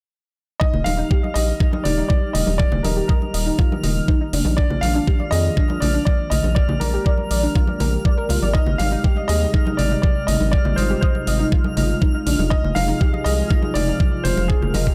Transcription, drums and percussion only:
0.61 kick loud
0.74 low conga medium
0.86 open hi-hat loud
0.86 high conga medium
1.11 kick loud
1.24 high conga medium
1.36 open hi-hat medium
1.60 kick loud
1.73 high conga medium
1.85 open hi-hat medium
1.85 low conga medium
2.10 kick loud
2.10 high conga medium
2.35 open hi-hat loud
2.35 low conga medium
2.47 high conga medium
2.60 kick loud
2.72 low conga medium
2.85 open hi-hat loud
2.85 high conga loud
3.09 kick loud
3.22 high conga medium
3.34 open hi-hat loud
3.59 kick loud
3.72 high conga medium
3.83 open hi-hat loud
3.83 low conga medium
4.08 kick loud
4.08 high conga medium
4.33 open hi-hat loud
4.33 low conga medium
4.45 high conga medium
4.58 kick loud
4.70 low conga medium
4.83 open hi-hat loud
4.83 high conga medium
5.07 kick loud
5.20 high conga medium
5.32 open hi-hat loud
5.57 kick loud
5.70 high conga medium
5.82 open hi-hat loud
5.82 low conga medium
6.07 kick loud
6.07 high conga medium
6.32 open hi-hat loud
6.32 low conga medium
6.44 high conga medium
6.56 kick loud
6.69 low conga loud
6.81 open hi-hat loud
6.81 high conga medium
7.06 kick loud
7.17 high conga medium
7.31 open hi-hat loud
7.55 kick loud
7.67 high conga medium
7.80 open hi-hat loud
7.80 low conga medium
8.05 kick loud
8.05 high conga medium
8.29 open hi-hat loud
8.29 low conga medium
8.42 high conga medium
8.55 kick loud
8.66 low conga medium
8.80 open hi-hat loud
8.80 high conga medium
9.04 kick loud
9.16 high conga medium
9.29 open hi-hat loud
9.54 kick loud
9.67 high conga medium
9.78 open hi-hat medium
9.78 low conga medium
10.03 kick loud
10.03 high conga medium
10.28 open hi-hat loud
10.28 low conga medium
10.40 high conga medium
10.53 kick loud
10.65 low conga medium
10.77 open hi-hat medium
10.77 high conga medium
11.03 kick loud
11.15 high conga medium
11.27 open hi-hat medium
11.52 kick loud
11.64 high conga medium
11.77 open hi-hat medium
11.77 low conga medium
12.02 kick loud
12.02 high conga medium
12.26 open hi-hat loud
12.26 low conga medium
12.39 high conga medium
12.51 kick loud
12.64 low conga medium
12.76 open hi-hat loud
12.76 high conga medium
13.01 kick loud
13.14 high conga medium
13.26 open hi-hat medium
13.50 kick loud
13.62 high conga medium
13.75 open hi-hat medium
13.75 low conga medium
14.00 kick loud
14.00 high conga medium
14.25 open hi-hat medium
14.25 low conga medium
14.37 high conga medium
14.50 kick loud
14.62 low conga medium
14.74 open hi-hat medium
14.74 high conga medium
14.87 kick medium

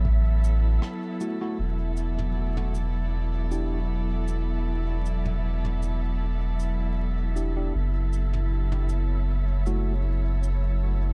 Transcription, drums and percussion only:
0.05 kick medium
0.44 cabasa medium
0.82 cross-stick medium
1.21 cabasa medium
1.97 cabasa medium
2.19 mid tom medium
2.57 mid tom medium
2.75 cabasa medium
3.52 cabasa medium
4.28 cabasa medium
5.06 cabasa medium
5.25 mid tom medium
5.65 mid tom medium
5.83 cabasa medium
6.60 cabasa medium
7.37 cabasa medium
8.13 cabasa medium
8.33 mid tom medium
8.72 mid tom medium
8.89 cabasa medium
9.66 cabasa medium
10.43 cabasa medium

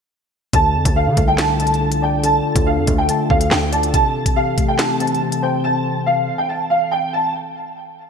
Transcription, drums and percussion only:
0.53 kick loud
0.53 closed hi-hat medium
0.85 kick loud
0.85 closed hi-hat medium
1.17 kick medium
1.17 closed hi-hat medium
1.38 snare loud
1.38 clap loud
1.38 closed hi-hat loud
1.60 closed hi-hat medium
1.67 closed hi-hat medium
1.74 closed hi-hat soft
1.92 closed hi-hat medium
2.24 closed hi-hat medium
2.56 kick loud
2.56 closed hi-hat medium
2.87 kick medium
2.87 closed hi-hat medium
3.09 closed hi-hat medium
3.30 kick medium
3.41 closed hi-hat medium
3.51 snare loud
3.51 clap medium
3.73 closed hi-hat medium
3.83 closed hi-hat medium
3.94 kick loud
3.94 closed hi-hat medium
4.26 kick loud
4.26 closed hi-hat medium
4.58 kick medium
4.58 closed hi-hat medium
4.79 snare loud
4.79 clap loud
4.79 closed hi-hat loud
5.00 closed hi-hat medium
5.07 closed hi-hat medium
5.15 closed hi-hat soft
5.32 closed hi-hat medium

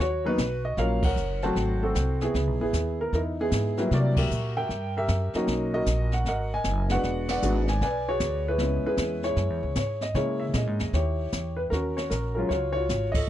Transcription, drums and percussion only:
0.00 brush sweep soft
0.00 snare soft
0.38 kick soft
0.38 snare medium
0.38 hi-hat pedal medium
0.77 brush sweep soft
0.77 kick soft
0.77 snare soft
1.03 kick medium
1.03 crash medium
1.17 hi-hat pedal medium
1.42 snare soft
1.56 brush sweep soft
1.56 kick soft
1.56 snare soft
1.95 kick soft
1.95 snare medium
1.95 hi-hat pedal medium
2.21 snare soft
2.34 brush sweep soft
2.34 kick soft
2.34 snare soft
2.73 kick soft
2.73 snare medium
2.73 hi-hat pedal medium
3.13 brush sweep soft
3.13 kick soft
3.13 snare soft
3.51 kick soft
3.51 snare medium
3.51 hi-hat pedal medium
3.77 snare soft
3.91 brush sweep medium
3.91 kick soft
3.91 snare soft
4.17 kick medium
4.17 crash medium
4.31 hi-hat pedal medium
4.70 brush sweep soft
4.70 kick soft
4.70 snare soft
5.08 kick soft
5.08 snare medium
5.08 hi-hat pedal medium
5.33 snare soft
5.47 brush sweep soft
5.47 kick soft
5.47 snare soft
5.86 kick soft
5.86 snare medium
5.86 hi-hat pedal medium
6.12 snare soft
6.25 brush sweep soft
6.25 kick soft
6.25 snare soft
6.64 kick soft
6.64 snare medium
6.64 hi-hat pedal medium
6.89 snare medium
7.03 brush sweep medium
7.03 kick soft
7.03 snare soft
7.28 snare medium
7.28 ride medium
7.42 hi-hat pedal medium
7.68 snare soft
7.81 brush sweep medium
7.81 kick soft
7.81 snare soft
8.20 kick soft
8.20 snare medium
8.20 hi-hat pedal medium
8.59 brush sweep medium
8.59 kick soft
8.59 snare soft
8.97 kick soft
8.97 snare medium
8.97 hi-hat pedal medium
9.23 snare soft
9.36 brush sweep soft
9.36 kick soft
9.36 snare soft
9.75 kick soft
9.75 snare medium
9.75 hi-hat pedal soft
10.01 snare soft
10.15 brush sweep soft
10.15 kick soft
10.15 snare soft
10.53 kick soft
10.53 snare medium
10.53 hi-hat pedal medium
10.79 snare soft
10.93 brush sweep soft
10.93 kick soft
10.93 snare soft
11.32 kick soft
11.32 snare medium
11.32 hi-hat pedal medium
11.72 brush sweep soft
11.72 kick soft
11.72 snare soft
11.97 snare soft
12.11 kick soft
12.11 snare medium
12.11 hi-hat pedal medium
12.50 brush sweep soft
12.50 kick soft
12.50 snare soft
12.89 kick soft
12.89 snare medium
12.89 hi-hat pedal medium
13.14 kick medium
13.14 ride medium

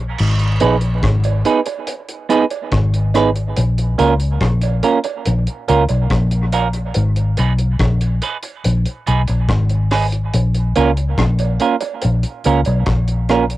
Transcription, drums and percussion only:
0.18 crash loud
0.18 vibraslap medium
0.39 closed hi-hat soft
0.60 closed hi-hat medium
0.60 cowbell medium
0.81 closed hi-hat soft
1.03 kick loud
1.03 cross-stick loud
1.03 closed hi-hat medium
1.24 closed hi-hat soft
1.24 cowbell medium
1.45 closed hi-hat medium
1.66 closed hi-hat medium
1.66 cowbell medium
1.87 closed hi-hat loud
2.09 closed hi-hat soft
2.30 closed hi-hat medium
2.51 closed hi-hat soft
2.51 cowbell medium
2.72 kick loud
2.72 cross-stick loud
2.72 closed hi-hat medium
2.94 closed hi-hat soft
3.14 cross-stick medium
3.14 closed hi-hat medium
3.14 cowbell medium
3.36 closed hi-hat soft
3.57 closed hi-hat loud
3.78 closed hi-hat soft
3.99 closed hi-hat medium
3.99 cowbell medium
4.20 closed hi-hat medium
4.41 kick loud
4.41 cross-stick loud
4.41 closed hi-hat medium
4.62 closed hi-hat soft
4.62 cowbell medium
4.83 closed hi-hat medium
5.04 closed hi-hat medium
5.04 cowbell medium
5.25 closed hi-hat loud
5.47 closed hi-hat soft
5.68 closed hi-hat medium
5.89 closed hi-hat soft
5.89 cowbell medium
6.10 kick loud
6.10 cross-stick loud
6.10 closed hi-hat medium
6.31 closed hi-hat soft
6.52 closed hi-hat medium
6.52 cowbell medium
6.73 closed hi-hat soft
6.94 closed hi-hat loud
7.16 closed hi-hat soft
7.37 closed hi-hat medium
7.37 cowbell medium
7.58 closed hi-hat soft
7.79 kick loud
7.79 cross-stick loud
7.79 closed hi-hat medium
8.01 closed hi-hat soft
8.01 cowbell medium
8.22 closed hi-hat medium
8.43 closed hi-hat medium
8.43 cowbell medium
8.64 closed hi-hat medium
8.86 closed hi-hat soft
9.07 closed hi-hat medium
9.28 closed hi-hat soft
9.28 cowbell medium
9.49 kick loud
9.49 cross-stick loud
9.49 closed hi-hat medium
9.70 closed hi-hat soft
9.91 cross-stick medium
9.91 open hi-hat medium
9.91 cowbell medium
10.12 closed hi-hat medium
10.34 closed hi-hat loud
10.55 closed hi-hat soft
10.76 closed hi-hat medium
10.76 cowbell medium
10.97 closed hi-hat soft
11.18 kick loud
11.18 cross-stick loud
11.18 closed hi-hat medium
11.39 closed hi-hat soft
11.39 cowbell medium
11.60 closed hi-hat medium
11.81 closed hi-hat medium
11.81 cowbell medium
12.02 closed hi-hat loud
12.23 closed hi-hat soft
12.44 closed hi-hat medium
12.65 closed hi-hat soft
12.65 cowbell medium
12.86 kick loud
12.86 cross-stick loud
12.86 closed hi-hat medium
13.08 closed hi-hat soft
13.29 cross-stick medium
13.29 closed hi-hat medium
13.29 cowbell medium
13.50 closed hi-hat soft

